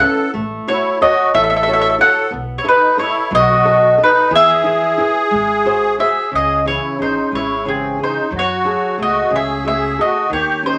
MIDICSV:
0, 0, Header, 1, 5, 480
1, 0, Start_track
1, 0, Tempo, 663717
1, 247, Time_signature, 6, 3, 24, 8
1, 7799, End_track
2, 0, Start_track
2, 0, Title_t, "Mandolin"
2, 0, Program_c, 0, 25
2, 0, Note_on_c, 0, 78, 87
2, 224, Note_off_c, 0, 78, 0
2, 494, Note_on_c, 0, 73, 84
2, 734, Note_off_c, 0, 73, 0
2, 737, Note_on_c, 0, 75, 82
2, 949, Note_off_c, 0, 75, 0
2, 973, Note_on_c, 0, 76, 93
2, 1018, Note_off_c, 0, 76, 0
2, 1038, Note_on_c, 0, 76, 63
2, 1075, Note_off_c, 0, 76, 0
2, 1083, Note_on_c, 0, 76, 77
2, 1122, Note_off_c, 0, 76, 0
2, 1131, Note_on_c, 0, 76, 63
2, 1170, Note_off_c, 0, 76, 0
2, 1179, Note_on_c, 0, 76, 75
2, 1231, Note_off_c, 0, 76, 0
2, 1254, Note_on_c, 0, 76, 76
2, 1295, Note_off_c, 0, 76, 0
2, 1312, Note_on_c, 0, 76, 80
2, 1351, Note_off_c, 0, 76, 0
2, 1370, Note_on_c, 0, 76, 52
2, 1408, Note_off_c, 0, 76, 0
2, 1452, Note_on_c, 0, 78, 93
2, 1664, Note_off_c, 0, 78, 0
2, 1868, Note_on_c, 0, 73, 61
2, 1919, Note_off_c, 0, 73, 0
2, 1942, Note_on_c, 0, 71, 88
2, 2151, Note_off_c, 0, 71, 0
2, 2165, Note_on_c, 0, 73, 77
2, 2404, Note_off_c, 0, 73, 0
2, 2422, Note_on_c, 0, 75, 107
2, 2905, Note_off_c, 0, 75, 0
2, 2919, Note_on_c, 0, 71, 81
2, 3119, Note_off_c, 0, 71, 0
2, 3149, Note_on_c, 0, 76, 108
2, 4318, Note_off_c, 0, 76, 0
2, 4339, Note_on_c, 0, 76, 77
2, 4557, Note_off_c, 0, 76, 0
2, 4595, Note_on_c, 0, 75, 83
2, 4824, Note_off_c, 0, 75, 0
2, 4827, Note_on_c, 0, 73, 84
2, 5043, Note_off_c, 0, 73, 0
2, 5076, Note_on_c, 0, 72, 68
2, 5286, Note_off_c, 0, 72, 0
2, 5318, Note_on_c, 0, 73, 76
2, 5556, Note_off_c, 0, 73, 0
2, 5558, Note_on_c, 0, 68, 63
2, 5768, Note_off_c, 0, 68, 0
2, 5811, Note_on_c, 0, 72, 65
2, 6015, Note_off_c, 0, 72, 0
2, 6066, Note_on_c, 0, 73, 92
2, 6524, Note_off_c, 0, 73, 0
2, 6526, Note_on_c, 0, 75, 74
2, 6754, Note_off_c, 0, 75, 0
2, 6767, Note_on_c, 0, 76, 80
2, 6979, Note_off_c, 0, 76, 0
2, 6998, Note_on_c, 0, 76, 80
2, 7231, Note_off_c, 0, 76, 0
2, 7239, Note_on_c, 0, 75, 74
2, 7447, Note_off_c, 0, 75, 0
2, 7470, Note_on_c, 0, 73, 81
2, 7689, Note_off_c, 0, 73, 0
2, 7710, Note_on_c, 0, 72, 83
2, 7799, Note_off_c, 0, 72, 0
2, 7799, End_track
3, 0, Start_track
3, 0, Title_t, "Nylon-string guitar"
3, 0, Program_c, 1, 24
3, 5, Note_on_c, 1, 61, 51
3, 10, Note_on_c, 1, 64, 49
3, 12, Note_on_c, 1, 71, 50
3, 197, Note_off_c, 1, 61, 0
3, 198, Note_off_c, 1, 64, 0
3, 200, Note_off_c, 1, 71, 0
3, 243, Note_on_c, 1, 57, 72
3, 488, Note_on_c, 1, 66, 59
3, 493, Note_on_c, 1, 69, 48
3, 499, Note_on_c, 1, 73, 62
3, 711, Note_off_c, 1, 57, 0
3, 720, Note_off_c, 1, 69, 0
3, 722, Note_off_c, 1, 66, 0
3, 727, Note_off_c, 1, 73, 0
3, 730, Note_on_c, 1, 66, 49
3, 731, Note_on_c, 1, 69, 46
3, 736, Note_on_c, 1, 73, 53
3, 968, Note_on_c, 1, 52, 72
3, 1109, Note_off_c, 1, 66, 0
3, 1109, Note_off_c, 1, 69, 0
3, 1113, Note_off_c, 1, 73, 0
3, 1206, Note_on_c, 1, 66, 54
3, 1211, Note_on_c, 1, 69, 52
3, 1216, Note_on_c, 1, 73, 61
3, 1426, Note_off_c, 1, 66, 0
3, 1427, Note_off_c, 1, 52, 0
3, 1428, Note_off_c, 1, 69, 0
3, 1430, Note_off_c, 1, 73, 0
3, 1434, Note_on_c, 1, 66, 51
3, 1439, Note_on_c, 1, 69, 41
3, 1439, Note_on_c, 1, 73, 50
3, 1624, Note_off_c, 1, 66, 0
3, 1625, Note_off_c, 1, 69, 0
3, 1627, Note_off_c, 1, 73, 0
3, 1667, Note_on_c, 1, 59, 72
3, 1908, Note_on_c, 1, 69, 64
3, 1910, Note_off_c, 1, 59, 0
3, 1913, Note_on_c, 1, 71, 59
3, 1915, Note_on_c, 1, 75, 61
3, 2140, Note_off_c, 1, 69, 0
3, 2144, Note_off_c, 1, 71, 0
3, 2147, Note_off_c, 1, 75, 0
3, 2149, Note_on_c, 1, 69, 59
3, 2153, Note_on_c, 1, 71, 52
3, 2156, Note_on_c, 1, 75, 62
3, 2392, Note_on_c, 1, 54, 71
3, 2538, Note_off_c, 1, 69, 0
3, 2541, Note_off_c, 1, 71, 0
3, 2543, Note_off_c, 1, 75, 0
3, 2639, Note_on_c, 1, 69, 54
3, 2643, Note_on_c, 1, 71, 54
3, 2645, Note_on_c, 1, 75, 63
3, 2861, Note_off_c, 1, 54, 0
3, 2867, Note_off_c, 1, 69, 0
3, 2869, Note_off_c, 1, 71, 0
3, 2872, Note_off_c, 1, 75, 0
3, 2875, Note_on_c, 1, 69, 46
3, 2879, Note_on_c, 1, 71, 42
3, 2881, Note_on_c, 1, 75, 56
3, 3065, Note_off_c, 1, 69, 0
3, 3066, Note_off_c, 1, 71, 0
3, 3068, Note_off_c, 1, 75, 0
3, 3116, Note_on_c, 1, 52, 80
3, 3353, Note_on_c, 1, 64, 55
3, 3357, Note_on_c, 1, 68, 58
3, 3358, Note_on_c, 1, 71, 62
3, 3585, Note_off_c, 1, 52, 0
3, 3589, Note_off_c, 1, 64, 0
3, 3595, Note_off_c, 1, 68, 0
3, 3596, Note_off_c, 1, 71, 0
3, 3598, Note_on_c, 1, 64, 53
3, 3603, Note_on_c, 1, 68, 50
3, 3606, Note_on_c, 1, 71, 57
3, 3790, Note_off_c, 1, 64, 0
3, 3794, Note_off_c, 1, 68, 0
3, 3794, Note_off_c, 1, 71, 0
3, 3839, Note_on_c, 1, 56, 62
3, 4088, Note_on_c, 1, 66, 48
3, 4092, Note_on_c, 1, 68, 45
3, 4096, Note_on_c, 1, 72, 62
3, 4314, Note_off_c, 1, 56, 0
3, 4317, Note_off_c, 1, 66, 0
3, 4321, Note_off_c, 1, 68, 0
3, 4324, Note_off_c, 1, 72, 0
3, 4326, Note_on_c, 1, 66, 46
3, 4329, Note_on_c, 1, 68, 41
3, 4336, Note_on_c, 1, 72, 57
3, 4519, Note_off_c, 1, 66, 0
3, 4521, Note_off_c, 1, 68, 0
3, 4523, Note_off_c, 1, 72, 0
3, 4566, Note_on_c, 1, 49, 64
3, 4813, Note_on_c, 1, 52, 46
3, 4813, Note_on_c, 1, 61, 53
3, 4818, Note_on_c, 1, 68, 57
3, 5038, Note_off_c, 1, 49, 0
3, 5043, Note_off_c, 1, 61, 0
3, 5051, Note_off_c, 1, 68, 0
3, 5051, Note_on_c, 1, 61, 49
3, 5059, Note_on_c, 1, 68, 44
3, 5193, Note_off_c, 1, 52, 0
3, 5289, Note_on_c, 1, 56, 54
3, 5437, Note_off_c, 1, 61, 0
3, 5442, Note_off_c, 1, 68, 0
3, 5534, Note_on_c, 1, 49, 55
3, 5537, Note_on_c, 1, 52, 45
3, 5542, Note_on_c, 1, 68, 58
3, 5757, Note_off_c, 1, 56, 0
3, 5771, Note_off_c, 1, 68, 0
3, 5771, Note_on_c, 1, 61, 44
3, 5779, Note_on_c, 1, 68, 47
3, 5915, Note_off_c, 1, 49, 0
3, 5917, Note_off_c, 1, 52, 0
3, 5962, Note_off_c, 1, 61, 0
3, 5967, Note_off_c, 1, 68, 0
3, 6008, Note_on_c, 1, 54, 64
3, 6252, Note_on_c, 1, 66, 55
3, 6257, Note_on_c, 1, 68, 49
3, 6260, Note_on_c, 1, 69, 62
3, 6480, Note_off_c, 1, 54, 0
3, 6483, Note_off_c, 1, 66, 0
3, 6485, Note_off_c, 1, 68, 0
3, 6491, Note_on_c, 1, 66, 49
3, 6495, Note_on_c, 1, 57, 50
3, 6497, Note_on_c, 1, 68, 41
3, 6639, Note_off_c, 1, 69, 0
3, 6729, Note_on_c, 1, 49, 59
3, 6879, Note_off_c, 1, 66, 0
3, 6880, Note_off_c, 1, 68, 0
3, 6881, Note_off_c, 1, 57, 0
3, 6971, Note_on_c, 1, 66, 50
3, 6975, Note_on_c, 1, 68, 47
3, 6980, Note_on_c, 1, 57, 58
3, 7198, Note_off_c, 1, 49, 0
3, 7209, Note_off_c, 1, 66, 0
3, 7214, Note_off_c, 1, 68, 0
3, 7218, Note_on_c, 1, 66, 44
3, 7223, Note_on_c, 1, 68, 43
3, 7224, Note_on_c, 1, 69, 51
3, 7357, Note_off_c, 1, 57, 0
3, 7405, Note_off_c, 1, 66, 0
3, 7408, Note_off_c, 1, 68, 0
3, 7409, Note_off_c, 1, 69, 0
3, 7446, Note_on_c, 1, 51, 64
3, 7687, Note_on_c, 1, 61, 54
3, 7690, Note_on_c, 1, 63, 50
3, 7691, Note_on_c, 1, 67, 56
3, 7799, Note_off_c, 1, 51, 0
3, 7799, Note_off_c, 1, 61, 0
3, 7799, Note_off_c, 1, 63, 0
3, 7799, Note_off_c, 1, 67, 0
3, 7799, End_track
4, 0, Start_track
4, 0, Title_t, "Accordion"
4, 0, Program_c, 2, 21
4, 0, Note_on_c, 2, 69, 83
4, 225, Note_off_c, 2, 69, 0
4, 497, Note_on_c, 2, 64, 67
4, 713, Note_off_c, 2, 64, 0
4, 726, Note_on_c, 2, 66, 79
4, 944, Note_off_c, 2, 66, 0
4, 969, Note_on_c, 2, 69, 80
4, 1412, Note_off_c, 2, 69, 0
4, 1450, Note_on_c, 2, 69, 84
4, 1663, Note_off_c, 2, 69, 0
4, 1883, Note_on_c, 2, 64, 47
4, 1924, Note_off_c, 2, 64, 0
4, 1932, Note_on_c, 2, 63, 67
4, 2146, Note_off_c, 2, 63, 0
4, 2171, Note_on_c, 2, 64, 87
4, 2384, Note_off_c, 2, 64, 0
4, 2420, Note_on_c, 2, 66, 81
4, 2861, Note_off_c, 2, 66, 0
4, 2911, Note_on_c, 2, 63, 85
4, 3115, Note_off_c, 2, 63, 0
4, 3128, Note_on_c, 2, 68, 99
4, 4308, Note_off_c, 2, 68, 0
4, 4341, Note_on_c, 2, 68, 65
4, 4558, Note_off_c, 2, 68, 0
4, 4584, Note_on_c, 2, 68, 67
4, 4807, Note_off_c, 2, 68, 0
4, 4827, Note_on_c, 2, 64, 48
4, 5043, Note_off_c, 2, 64, 0
4, 5056, Note_on_c, 2, 63, 66
4, 5275, Note_off_c, 2, 63, 0
4, 5306, Note_on_c, 2, 64, 70
4, 5527, Note_off_c, 2, 64, 0
4, 5554, Note_on_c, 2, 60, 66
4, 5766, Note_off_c, 2, 60, 0
4, 5799, Note_on_c, 2, 63, 65
4, 6008, Note_off_c, 2, 63, 0
4, 6037, Note_on_c, 2, 66, 72
4, 6480, Note_off_c, 2, 66, 0
4, 6535, Note_on_c, 2, 66, 77
4, 6737, Note_off_c, 2, 66, 0
4, 6751, Note_on_c, 2, 68, 78
4, 6970, Note_off_c, 2, 68, 0
4, 7004, Note_on_c, 2, 68, 82
4, 7211, Note_off_c, 2, 68, 0
4, 7243, Note_on_c, 2, 66, 72
4, 7449, Note_off_c, 2, 66, 0
4, 7469, Note_on_c, 2, 67, 77
4, 7689, Note_off_c, 2, 67, 0
4, 7708, Note_on_c, 2, 63, 59
4, 7799, Note_off_c, 2, 63, 0
4, 7799, End_track
5, 0, Start_track
5, 0, Title_t, "Upright bass"
5, 0, Program_c, 3, 32
5, 250, Note_on_c, 3, 33, 86
5, 408, Note_off_c, 3, 33, 0
5, 971, Note_on_c, 3, 33, 97
5, 1430, Note_off_c, 3, 33, 0
5, 1689, Note_on_c, 3, 35, 87
5, 1843, Note_off_c, 3, 35, 0
5, 2401, Note_on_c, 3, 35, 101
5, 2867, Note_off_c, 3, 35, 0
5, 3117, Note_on_c, 3, 40, 96
5, 3276, Note_off_c, 3, 40, 0
5, 3850, Note_on_c, 3, 32, 92
5, 4321, Note_off_c, 3, 32, 0
5, 4577, Note_on_c, 3, 37, 88
5, 4890, Note_off_c, 3, 37, 0
5, 5064, Note_on_c, 3, 32, 63
5, 5215, Note_off_c, 3, 32, 0
5, 5299, Note_on_c, 3, 32, 86
5, 5764, Note_off_c, 3, 32, 0
5, 6018, Note_on_c, 3, 42, 97
5, 6331, Note_off_c, 3, 42, 0
5, 6503, Note_on_c, 3, 37, 69
5, 6654, Note_off_c, 3, 37, 0
5, 6736, Note_on_c, 3, 37, 93
5, 7201, Note_off_c, 3, 37, 0
5, 7458, Note_on_c, 3, 39, 88
5, 7769, Note_off_c, 3, 39, 0
5, 7799, End_track
0, 0, End_of_file